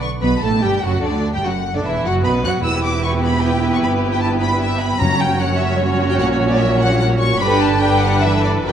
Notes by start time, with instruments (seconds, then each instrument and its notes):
0.01 violin section C#6
0.21 double bass section B1, cello section B2, timpani B2, viola section B3, violin section B4 B5
0.41 double bass section A1, cello section A2, viola section A3, violin section A4 A5
0.62 double bass section G1, cello section G2, viola section G3, violin section G4 G5
0.82 double bass section F#1, cello section F#2, viola section F#3, violin section F#4 F#5
1.02 cello section D2, double bass section D2, viola section D3, violin section D4 D5
1.33 cello section G2, viola section G3, violin section G4 G5
1.44 double bass section F#1, cello section F#2, viola section F#3, violin section F#4 F#5
1.75 cello section D2, viola section D3, violin section D4 D5
1.84 double bass section E1, cello section E2, viola section E3, violin section E4 E5
2.05 double bass section F#1, cello section F#2, viola section F#3, violin section F#4 F#5
2.25 double bass section B1, cello section B2, viola section B3, violin section B4 B5
2.44 double bass section F#2, cello section F#3, viola section F#4, violin section F#5 F#6
2.64 double bass section E1, cello section E2, viola section B3 E4, violin section G4 B4 E6
2.84 violin section D6
3.04 violin section C#6
3.23 violin section B5
3.43 violin section G5
3.74 violin section C#6
3.83 double bass section G1, cello section G2, violin section B5
4.12 violin section G5
4.21 violin section A5
4.41 violin section B5
4.61 violin section E5
4.80 violin section B5
5.00 double bass section F#1, cello section F#2, timpani F#2, viola section F#3 C#4, violin section F#4 C#5 A#5
5.20 violin section G5
5.40 violin section F#5
5.60 violin section E5
5.79 violin section C#5
6.10 violin section G5
6.20 double bass section A#1, cello section A#2, violin section F#5
6.50 violin section D5
6.59 violin section E5
6.80 violin section F#5
6.99 violin section F#5
7.19 violin section C#6
7.40 double bass section G1, cello section G2, viola section D3 D4, violin section G4 B4 B5
7.61 violin section A5
7.81 viola section D3 D4, violin section G4 B4 G5
8.01 violin section F#5
8.22 viola section E3, violin section A4 E5
8.43 violin section D5
8.64 double bass section F#1, cello section F#2, viola section F#3 D4, violin section B4 G5